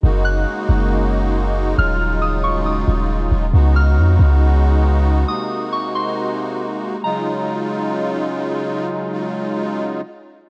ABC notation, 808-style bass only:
X:1
M:4/4
L:1/8
Q:1/4=137
K:Ebm
V:1 name="808-style bass" clef=bass
G,,,2 z G,,,4- G,,, | E,,,4- E,,, E,,,2 E,,, | D,,2 F,, D,,4- D,, | z8 |
z8 | z8 |]